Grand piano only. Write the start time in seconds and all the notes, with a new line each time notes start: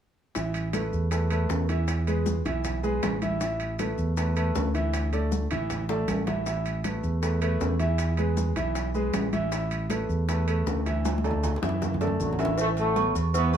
0.35 E3 E4 E5
0.74 A3 A4 B4
1.11 A3 A4 B4
1.31 A3 A4 B4
1.69 E3 E4 E5
2.07 G#3 G#4 B4
2.45 E3 E4 E5
2.83 G#3 G#4 B4
3.22 E3 E4 E5
3.41 E3 E4 E5
3.79 A3 A4 B4
4.17 A3 A4 B4
4.36 A3 A4 B4
4.74 E3 E4 E5
5.13 A3 A4 D5
5.51 E3 E4 E5
5.89 A3 A4 D5
6.27 E3 E4 E5
6.46 E3 E4 E5
6.84 A3 A4 B4
7.22 A3 A4 B4
7.41 A3 A4 B4
7.79 E3 E4 E5
8.18 G#3 G#4 B4
8.56 E3 E4 E5
8.94 G#3 G#4 B4
9.33 E3 E4 E5
9.52 E3 E4 E5
9.90 A3 A4 B4
10.28 A3 A4 B4
10.47 A3 A4 B4
10.86 E3 E4 E5
11.24 A3 A4 D5
11.62 E3 E4 E5
12.00 A3 A4 D5
12.39 E3 E4 E5
12.58 E3 E4 E5
12.96 B3 B4 B5
13.34 E4 E5 E6
13.54 B3